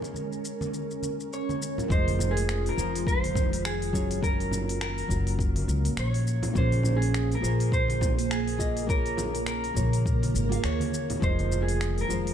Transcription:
Already playing: G#3 A#3 C#4 F4 G#4 A#4 C#5
0.02 muted conga, shaker
0.14 high conga, shaker
0.32 shaker
0.45 shaker
0.61 high conga, shaker
0.74 shaker
0.91 shaker
1.03 high conga, shaker
1.20 shaker
1.33 C#5, shaker
1.49 high conga, shaker
1.62 shaker
1.78 low conga, shaker
1.88 F1 D#3 F3 G#3 F4 G#4 C5 D#5, kick, shaker
2.08 open hi-hat, high conga, shaker
2.19 low conga, shaker
2.31 G#4
2.37 open hi-hat, shaker
2.49 finger snap, shaker
2.66 A#4, open hi-hat, shaker
2.76 F1 F3 F4 G#4 C5, shaker
2.96 open hi-hat, shaker
3.07 C5, kick, shaker
3.24 open hi-hat, high conga, shaker
3.35 kick, low conga, shaker
3.53 open hi-hat, shaker
3.65 G#4, finger snap, shaker
3.82 open hi-hat, shaker
3.93 F#1 F#3 A#3 C#4 F4 C#5, kick, shaker
4.11 open hi-hat, shaker
4.21 F#3 C#4 F4 A#4, kick, shaker
4.40 open hi-hat, shaker
4.51 low conga, shaker
4.69 open hi-hat, shaker
4.81 A#4, finger snap, shaker
4.98 open hi-hat, shaker
5.07 F#1 F#3 C#4 F4 A#4, kick, shaker
5.27 open hi-hat, shaker
5.39 kick, shaker
5.56 open hi-hat, high conga, shaker
5.68 C#2, shaker
5.85 open hi-hat, shaker
5.97 A#1 C#5, finger snap, shaker
6.14 open hi-hat, shaker
6.27 shaker
6.43 open hi-hat, low conga, shaker
6.53 A#1 A#3 C#4 F4 G#4, kick, shaker
6.57 C#3 G#4 C5
6.71 open hi-hat, high conga, shaker
6.83 low conga, shaker
6.96 G#4
7.02 open hi-hat, shaker
7.14 finger snap, shaker
7.32 A#4, open hi-hat, shaker
7.40 A#1 A#3 F4 G#4 C5
7.44 shaker
7.60 open hi-hat, shaker
7.72 C5, kick, shaker
7.88 open hi-hat, high conga, shaker
8.01 kick, low conga, shaker
8.19 open hi-hat, shaker
8.31 G#4, finger snap, shaker
8.48 open hi-hat, shaker
8.58 A#3 F4 G#4 D#5, kick, shaker
8.77 open hi-hat, shaker
8.86 A#3 F4 G#4 A#4 C#5, kick, shaker
9.06 open hi-hat, shaker
9.17 muted conga, low conga, shaker
9.35 open hi-hat, shaker
9.46 A#4, finger snap, shaker
9.64 open hi-hat, shaker
9.74 A#1 A#3 F4 G#4 C#5, kick, high conga, shaker
9.93 open hi-hat, shaker
10.06 kick, shaker
10.23 open hi-hat, high conga, shaker
10.35 G#1, shaker
10.49 A#3 F4 G#4 F5, open hi-hat
10.53 shaker
10.64 D#2 C#5, finger snap, shaker
10.80 open hi-hat, high conga, shaker
10.94 shaker
11.10 open hi-hat, low conga, shaker
11.20 F1 D#3 F3 G#3 F4 G#4 C5 D#5, kick, shaker
11.39 open hi-hat, high conga, shaker
11.52 low conga, shaker
11.62 G#4
11.68 open hi-hat, shaker
11.81 finger snap, shaker
11.98 A#4, open hi-hat, shaker
12.07 F1 F3 F4 G#4 C5, shaker
12.27 open hi-hat, shaker

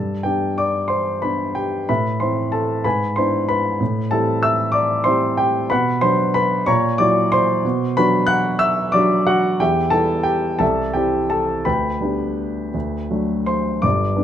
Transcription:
Already playing: G2 A4 A5
0.23 B3 D4 G4 G5
0.58 D5 D6
0.88 C5 C6
1.22 B3 D4 B4 B5
1.55 G4 G5
1.89 A2 B4 E5 B5
2.20 A3 C4 E4 C5 C6
2.52 A4 A5
2.84 G#2 B4 G#5 B5
3.16 B3 D4 E4 C5 C6
3.49 B4 B5
3.80 A2
4.11 G3 C4 E4 A4 A5
4.43 E5 E6
4.72 D5 D6
5.04 G3 C4 E4 C5 C6
5.37 G4 G5
5.70 B2 B4 F#5 B5
6.01 F#3 B3 D4 C5 C6
6.34 B4 B5
6.66 A#2 C#5 A#5 C#6
6.98 F#3 E4 F#4 D5 D6
7.32 C5 C6
7.65 B2
7.97 F#3 D4 F#4 B4 B5
8.27 F#5 F#6
8.59 E5 E6
8.92 F#3 D4 F#4 D5 D6
9.27 F#4 F#5
9.60 E2 G4 E5 G5
9.90 G3 B3 E4 A4 A5
10.23 G4 G5
10.59 C2 A4 E5 A5
10.93 G3 C4 E4 G4 G5
11.30 A4 A5
11.65 D2 B4 G5 B5
12.01 G3 B3 D4
12.74 D2
13.10 F#3 A3 D4
13.46 C5 C6
13.82 G1 G2 D5 D6
14.17 G3 B3 D4

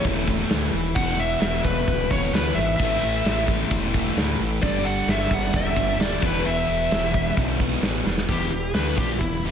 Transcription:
Already playing: A2 E3 A3 E4 B4
0.04 E1 A2 E3 A3, kick, crash
0.27 A2 E3 A3, kick
0.40 snare
0.50 D2, snare, crash
0.73 D#1, snare
0.95 E1 E2 B2 E3 B3 F#4 F#5, kick, crash
0.99 E3
1.20 E5
1.41 E1 E5, snare, crash
1.64 E1 B4, kick
1.87 D1, kick, crash
2.11 E1 E2 B2 E3 C#5, kick
2.33 D2 E2 B2 B4, snare, crash
2.37 E3
2.54 G#1 E5, snare
2.76 A1 A2 E3 A3 E4 B4 E5, kick, crash
2.82 A3
3.02 A1
3.24 A1, snare, crash
3.48 kick
3.71 E1, kick, crash
3.94 A2 E3 A3, kick
4.07 snare
4.16 D2 A2 E3, snare, crash
4.20 A3
4.40 A1, snare
4.61 G1 G2 D3 G3 D4 A4 D5, kick, crash
4.66 G3
4.85 F#5
5.07 G1 E5, snare, crash
5.31 G1 F#5, kick
5.53 E1 E5, kick, crash
5.76 G1 G2 D3 G3, kick
5.98 D#1 G2 D3 G3 D5, snare, crash
6.21 E1 E2 B2 E3 B3 F#4, kick, snare, crash
6.26 B4
6.44 E1 E5, crash
6.68 E1
6.91 E1, snare, crash
7.14 kick
7.36 B1 E2 B2 E3, kick, crash
7.60 E2 B2 E3, kick
7.72 snare
7.82 A1, snare, crash
8.06 E1, snare
8.18 snare
8.28 E1 E2 B2 E3 B3 E4 G4, kick, open hi-hat
8.51 E1 E2 B2
8.73 D2 D3 A3 D4 B4, snare, open hi-hat
8.96 A#1 A#2 F3 A#3 G4, kick
9.19 E1 E2 B2 E4, kick, open hi-hat
9.43 E1 E2 B2 E3, snare

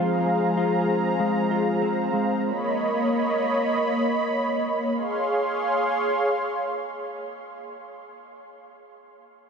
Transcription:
Already playing: F3 G#3 C4 F4 G#4 C5 F5 A#5
0.26 G#3
0.57 F4
0.89 C4
1.20 G#3
1.51 F4
1.82 C4
2.13 G#3
2.44 A#3 C#5 D#5 B5
4.94 G#4 C#5 F5 C6

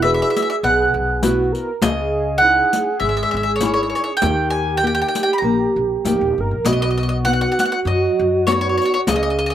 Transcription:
Already playing: E1
0.02 E4 F#4 G#4 B4 E5
0.14 E5
0.22 E5
0.30 E5
0.36 E5, riq
0.42 E5
0.50 E5
0.63 B1 B2 F#5
0.94 B1
1.22 B3 E4 F#4, riq
1.52 A#4, riq
1.82 C#2 C#3 G#4 D#5, riq
2.38 C#4 D#4 F#5
2.42 E4
2.73 riq
3.00 G#1 G#3 E5
3.09 E5
3.17 E5
3.23 E5
3.31 G#1 E5
3.37 E5
3.43 E5
3.56 C#5
3.61 C#4 D#4 E4, riq
3.66 C#5
3.74 C#5
3.83 C#5
3.90 C#5
3.95 C#5, riq
4.04 C#5
4.17 G5
4.21 D#2 D#3 G4, riq
4.50 G#5
4.77 G5
4.83 A#3 D#4 G4
4.87 G5
4.95 G5
5.02 G5
5.08 G5
5.15 G5, riq
5.23 G5
5.33 B5
5.38 A#5
5.42 A#1 A#3
5.76 A#1
6.05 C#1 A#3 D#4 G4, riq
6.21 D#1
6.38 G1 A#4
6.51 A#1
6.65 B1 B2 F#4 D#5, riq
6.73 D#5
6.82 D#5
6.91 D#5
6.98 D#5
7.03 D#5
7.09 D#5
7.25 B3 D#4 F#4 F#5
7.33 F#5
7.41 F#5
7.52 F#5
7.59 F#5, riq
7.65 F#5
7.72 F#5
7.85 F#2 F#3 D#5
8.19 F#2
8.47 B3 D#4 F#4 C#5, riq
8.52 C#5
8.61 C#5
8.69 C#5
8.78 C#5
8.82 C#5, riq
8.94 C#5
9.07 C#2 C#3 G#4 D#5, riq
9.16 D#5
9.23 D#5
9.30 D#5
9.39 D#5
9.46 D#5

